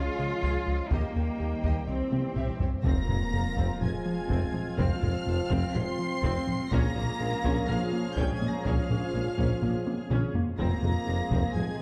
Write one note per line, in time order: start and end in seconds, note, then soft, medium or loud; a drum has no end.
0.00 0.87 F3 medium
0.00 0.91 F3 medium
0.00 0.87 G#3 medium
0.00 0.91 G#3 medium
0.00 0.91 C#4 medium
0.00 0.92 F4 medium
0.00 0.88 G#4 medium
0.00 0.91 G#4 medium
0.00 0.88 C#5 medium
0.00 0.87 F5 medium
0.18 0.27 C#2 medium
0.18 0.34 C#3 medium
0.18 0.27 G#4 medium
0.18 0.26 F5 soft
0.42 0.51 C#2 medium
0.42 0.57 C#2 medium
0.42 0.65 G#4 medium
0.42 0.65 F5 medium
0.42 taiko medium
0.67 0.82 C#2 medium
0.67 0.75 C#2 soft
0.67 0.75 G#4 medium
0.67 0.75 D#5 medium
0.91 1.06 D#2 medium
0.91 0.99 D#2 medium
0.91 1.84 D#3 medium
0.91 1.88 D#3 medium
0.91 2.57 G3 medium
0.91 1.88 A#3 medium
0.91 1.88 D#4 medium
0.91 1.14 G4 medium
0.91 2.85 G4 medium
0.91 1.84 A#4 medium
0.91 1.84 D#5 medium
0.91 1.14 D#5 medium
0.91 2.61 G5 medium
0.91 taiko medium
0.91 swell medium
1.15 1.30 D#2 medium
1.15 1.24 D#2 soft
1.15 1.23 G4 soft
1.15 1.23 C#5 soft
1.39 1.47 D#2 soft
1.39 1.54 D#2 medium
1.39 1.47 G4 soft
1.39 1.47 D#5 soft
1.63 1.71 D#2 medium
1.63 1.78 D#2 medium
1.63 1.86 G4 medium
1.63 1.86 D#5 medium
1.63 taiko medium
1.87 1.96 C2 soft
1.87 2.03 C2 medium
1.87 2.85 E3 medium
1.87 2.57 E3 medium
1.87 2.85 G3 medium
1.87 2.59 C4 medium
1.87 2.83 C4 medium
1.87 2.56 G4 medium
1.87 1.96 G4 soft
1.87 2.56 C5 medium
1.87 1.95 C#5 soft
2.11 2.19 C2 soft
2.11 2.26 C3 medium
2.11 2.19 G4 soft
2.11 2.19 E5 soft
2.11 taiko high medium
2.36 2.44 C2 medium
2.36 2.51 C2 medium
2.36 2.59 G4 medium
2.36 2.59 E5 medium
2.36 taiko low-mid medium
2.60 2.68 C2 soft
2.60 2.75 C2 medium
2.60 2.68 G4 soft
2.60 2.68 C#5 soft
2.60 taiko low medium
2.83 2.92 F1 medium
2.83 2.94 F1 medium
2.83 2.99 F2 medium
2.83 2.93 F2 medium
2.83 6.67 F3 medium
2.83 6.68 F3 medium
2.83 6.68 G#3 medium
2.83 3.78 A#3 medium
2.83 6.68 C4 medium
2.83 3.07 C4 medium
2.83 6.68 C4 medium
2.83 6.67 F4 medium
2.83 6.68 F4 medium
2.83 3.78 A#5 medium
2.83 3.77 A#6 loud
2.83 taiko loud
2.83 impact medium
3.08 3.16 F1 medium
3.08 3.18 F1 medium
3.08 3.17 F2 soft
3.08 3.23 F2 medium
3.08 3.17 G#3 soft
3.08 taiko low-mid soft
3.33 3.41 F1 medium
3.33 3.43 F1 soft
3.33 3.47 F2 medium
3.33 3.41 F2 soft
3.33 3.41 F3 soft
3.57 3.65 F1 medium
3.57 3.67 F1 medium
3.57 3.71 F2 medium
3.57 3.65 F2 medium
3.57 3.80 C4 medium
3.57 taiko medium
3.81 3.89 F1 medium
3.81 3.91 F1 soft
3.81 3.90 F2 soft
3.81 3.96 F3 medium
3.81 4.78 G#3 medium
3.81 3.90 G#3 soft
3.81 4.78 G#5 medium
3.81 4.79 G#6 medium
3.81 taiko low-mid medium
4.06 4.20 F3 medium
4.29 4.39 F1 medium
4.29 4.38 F1 medium
4.29 4.44 F2 medium
4.29 4.38 F2 medium
4.29 4.52 C4 medium
4.29 taiko medium
4.54 4.68 F3 medium
4.54 taiko low-mid soft
4.78 4.86 F1 medium
4.78 4.88 F1 medium
4.78 4.93 F2 loud
4.78 4.87 F2 medium
4.78 5.73 F3 medium
4.78 5.01 C4 medium
4.78 5.73 F5 medium
4.78 5.73 F6 loud
4.78 taiko loud
5.03 5.11 F1 medium
5.03 5.12 F1 medium
5.03 5.17 F2 medium
5.03 5.11 F2 medium
5.03 5.11 G#3 medium
5.03 taiko low-mid medium
5.27 5.35 F1 medium
5.27 5.37 F1 medium
5.27 5.41 F2 medium
5.27 5.35 F2 medium
5.27 5.35 F3 medium
5.50 5.59 F1 medium
5.50 5.61 F1 medium
5.50 5.65 F2 medium
5.50 5.59 F2 medium
5.50 5.73 C4 medium
5.50 taiko medium
5.74 5.84 F1 medium
5.74 5.85 F1 medium
5.74 5.83 F2 medium
5.74 5.89 F3 medium
5.74 5.83 G#3 medium
5.74 6.73 C4 loud
5.74 6.70 C6 loud
5.74 6.71 C7 loud
5.74 taiko low-mid medium
5.99 6.14 F3 medium
6.23 6.32 F1 medium
6.23 6.34 F1 loud
6.23 6.37 F2 medium
6.23 6.32 F2 loud
6.23 6.46 C4 medium
6.23 taiko medium
6.47 6.62 F3 medium
6.47 taiko low-mid medium
6.71 6.80 A#1 loud
6.71 6.82 A#1 medium
6.71 6.86 A#2 loud
6.71 6.80 A#2 loud
6.71 10.55 F3 medium
6.71 10.31 F3 loud
6.71 10.55 G#3 medium
6.71 7.67 A#3 loud
6.71 10.59 C#4 medium
6.71 6.94 C#4 loud
6.71 10.31 C#4 loud
6.71 10.55 F4 medium
6.71 10.35 G#4 medium
6.71 7.69 A#5 loud
6.71 7.68 A#6 loud
6.71 taiko loud
6.96 7.04 A#1 medium
6.96 7.06 A#1 medium
6.96 7.10 A#2 medium
6.96 7.05 A#2 medium
6.96 7.05 A#3 medium
6.96 taiko low-mid medium
7.20 7.28 A#1 medium
7.20 7.30 A#1 medium
7.20 7.35 A#2 medium
7.20 7.29 A#2 medium
7.20 7.29 G#3 medium
7.44 7.54 A#1 medium
7.44 7.53 A#1 loud
7.44 7.59 A#2 medium
7.44 7.53 A#2 loud
7.44 7.67 C#4 medium
7.44 taiko medium
7.68 7.78 A#1 medium
7.68 7.77 A#1 medium
7.68 7.77 A#2 medium
7.68 8.17 F3 medium
7.68 7.83 A#3 medium
7.68 7.77 A#3 medium
7.68 8.17 F5 medium
7.68 8.17 F6 loud
7.68 taiko low-mid medium
7.93 8.07 A#3 medium
8.17 8.26 A#1 medium
8.17 8.25 A#1 medium
8.17 8.31 A#2 medium
8.17 8.25 A#2 medium
8.17 8.33 G3 medium
8.17 8.40 C#4 medium
8.17 8.33 G5 medium
8.17 8.33 G6 medium
8.17 taiko medium
8.34 8.50 G#3 medium
8.34 8.50 G#5 medium
8.34 8.49 G#6 medium
8.41 8.56 A#3 medium
8.41 taiko low-mid soft
8.50 8.66 A#3 medium
8.50 8.66 A#5 medium
8.50 8.66 A#6 medium
8.65 8.75 A#1 medium
8.65 8.73 A#1 medium
8.65 8.80 A#2 loud
8.65 8.74 A#2 medium
8.65 10.08 F3 medium
8.65 8.88 C#4 medium
8.65 10.11 F5 medium
8.65 10.08 F6 medium
8.65 taiko loud
8.89 8.97 A#1 medium
8.89 8.99 A#1 medium
8.89 9.05 A#2 medium
8.89 8.98 A#2 soft
8.89 8.98 A#3 soft
8.89 taiko low-mid medium
9.13 9.21 A#1 medium
9.13 9.23 A#1 soft
9.13 9.29 A#2 medium
9.13 9.22 A#2 medium
9.13 9.22 G#3 soft
9.37 9.45 A#1 medium
9.37 9.48 A#1 medium
9.37 9.52 A#2 medium
9.37 9.46 A#2 medium
9.37 9.60 C#4 medium
9.37 taiko medium
9.62 9.70 A#1 medium
9.62 9.72 A#1 soft
9.62 9.71 A#2 medium
9.62 9.70 A#3 medium
9.62 9.77 A#3 medium
9.62 taiko low-mid medium
9.86 10.01 A#3 medium
9.86 taiko high medium
10.10 10.18 A#1 medium
10.10 10.20 A#1 medium
10.10 10.25 A#2 medium
10.10 10.19 A#2 medium
10.10 10.33 C#4 medium
10.10 taiko mid medium
10.35 10.50 A#3 medium
10.35 taiko low medium
10.59 10.68 F1 medium
10.59 10.67 F1 medium
10.59 10.67 F2 medium
10.59 10.74 F2 loud
10.59 11.82 F3 medium
10.59 11.82 G#3 medium
10.59 11.52 A#3 medium
10.59 11.82 C4 medium
10.59 10.82 C4 medium
10.59 11.82 F4 medium
10.59 11.82 G#4 medium
10.59 11.52 A#5 medium
10.59 11.52 A#6 loud
10.59 taiko loud
10.83 10.93 F1 medium
10.83 10.91 F1 medium
10.83 10.91 F2 medium
10.83 10.98 F2 medium
10.83 10.91 G#3 medium
10.83 taiko low-mid medium
11.07 11.17 F1 medium
11.07 11.16 F1 medium
11.07 11.16 F2 medium
11.07 11.22 F2 medium
11.07 11.15 F3 medium
11.31 11.39 F1 medium
11.31 11.41 F1 medium
11.31 11.46 F2 loud
11.31 11.40 F2 medium
11.31 11.54 C4 medium
11.31 taiko medium
11.55 11.66 F1 soft
11.55 11.64 F1 medium
11.55 11.64 F2 medium
11.55 11.71 F3 medium
11.55 11.64 G#3 medium
11.55 11.82 G#3 medium
11.55 11.82 G#5 medium
11.55 11.82 G#6 medium
11.55 taiko low-mid medium